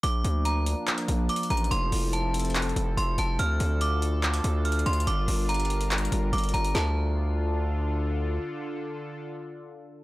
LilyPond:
<<
  \new Staff \with { instrumentName = "Synth bell" } { \time 4/4 \key d \minor \tempo 4 = 143 d'''4 bes''2 d'''8 bes''8 | c'''4 a''2 c'''8 a''8 | f'''4 d'''2 f'''8 c'''8 | d'''4 bes''2 d'''8 bes''8 |
a''2. r4 | r1 | }
  \new Staff \with { instrumentName = "Analog synth pad" } { \time 4/4 \key d \minor << { d'1 | a'1 | <d a'>1 | <g bes'>1 |
<d d' f' a'>1~ | <d d' f' a'>1 | } \\ { <f bes>1 | <c' e'>1 | <d' f'>1~ | <d' f'>1 |
r1 | r1 | } >> }
  \new Staff \with { instrumentName = "808-style bass" } { \clef bass \time 4/4 \key d \minor bes,,8 d,4~ d,16 r8. bes,,8 r8 a,,8 | f,,8 f,,2 f,,8 f,,8 f,,8 | d,8 d,2 d,4 d,8 | g,,8 g,,2 g,,8 g,,8 g,,8 |
d,1 | r1 | }
  \new DrumStaff \with { instrumentName = "Drums" } \drummode { \time 4/4 hh8 hh8 hh8 hh8 <hc hh>16 hh16 hh8 \tuplet 3/2 { hh16 hh16 hh16 hh16 hh16 hh16 } | hh8 hho8 hh8 hh32 hh32 hh32 hh32 \tuplet 3/2 { <hc hh>16 hh16 hh16 hh16 r16 r16 } hh8 hh8 | hh8 hh8 hh8 hh8 <hc hh>16 hh16 hh8 \tuplet 3/2 { hh16 hh16 hh16 hh16 hh16 hh16 } | hh8 hho8 hh32 hh32 hh32 hh32 hh16 hh16 \tuplet 3/2 { <hc hh>16 hh16 hh16 hh16 r16 r16 } hh32 hh32 hh32 hh32 hh16 hh16 |
sn4 r4 r4 r4 | r4 r4 r4 r4 | }
>>